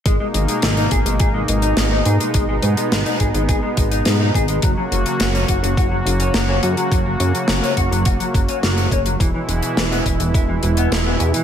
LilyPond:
<<
  \new Staff \with { instrumentName = "Analog synth pad" } { \clef bass \time 4/4 \key gis \minor \tempo 4 = 105 << { <b, gis dis'>1~ | <b, gis dis'>1 | <cis fis fis'>1~ | <cis fis fis'>1 |
<b, e e'>1 | } \\ { ais1 | b1 | ais1~ | ais1 |
gis1 | } >> }
  \new Staff \with { instrumentName = "Clean electric guitar" } { \clef bass \time 4/4 \key gis \minor gis16 gis16 gis16 gis16 gis16 dis'16 gis'16 gis16 gis'16 gis16 gis16 dis'16 gis16 dis'16 gis'16 gis16 | gis16 gis16 gis16 gis16 gis16 dis'16 gis'16 gis16 gis'16 gis16 gis16 dis'16 gis16 dis'16 gis'16 gis16 | fis16 fis16 fis16 fis16 fis16 cis'16 fis'16 fis16 fis'16 fis16 fis16 cis'16 fis16 cis'16 fis'16 fis16 | fis16 fis16 fis16 fis16 fis16 cis'16 fis'16 fis16 fis'16 fis16 fis16 cis'16 ais16 fis16 cis'16 fis16 |
e16 e16 e16 e16 e16 b16 e'16 e16 e'16 e16 e16 b16 e16 b16 e'16 e16 | }
  \new Staff \with { instrumentName = "Analog synth bass" } { \clef bass \time 4/4 \key gis \minor gis,,16 r16 gis,,16 r16 gis,,8 gis,,16 gis,,16 gis,,8 gis,,8 gis,,8 gis,16 r16 | gis,,8 gis,16 r16 gis,,16 r16 gis,,16 gis,,16 gis,,16 r16 gis,,8 gis,8 gis,,8 | fis,,16 r16 fis,,16 r16 fis,,8 fis,,16 fis,,16 fis,,8 fis,,8 fis,,8 fis,16 r16 | fis,,8 fis,16 r16 fis,,16 r16 fis,,16 fis,,16 fis,,16 r16 fis,,16 r16 fis,,8 fis,,8 |
e,,16 r16 e,,16 r16 e,,8 e,,16 e,,16 e,,8 e,,8 e,,8 e,16 r16 | }
  \new DrumStaff \with { instrumentName = "Drums" } \drummode { \time 4/4 <hh bd>8 hh16 hh16 <hh sn>16 hh16 <hh bd>16 hh16 <hh bd>8 hh16 hh16 <hh sn>8 hh16 hh16 | <hh bd>8 hh16 hh16 <hh sn>16 hh16 <hh bd>16 hh16 <hh bd>8 <hh bd>16 hh16 <hh sn>8 <hh bd>16 hh16 | <hh bd>8 hh16 hh16 <hh sn>16 hh16 <hh bd>16 hh16 <hh bd>8 hh16 hh16 <hh sn>8 hh16 hh16 | <hh bd>8 hh16 hh16 <hh sn>16 hh16 <hh bd>16 hh16 <hh bd>16 hh16 <hh bd>16 hh16 <hh sn>16 hh16 <hh bd>16 hh16 |
<hh bd>8 hh16 hh16 <hh sn>16 hh16 <hh bd>16 hh16 <hh bd>8 hh16 hh16 <hh sn>8 hh16 hh16 | }
>>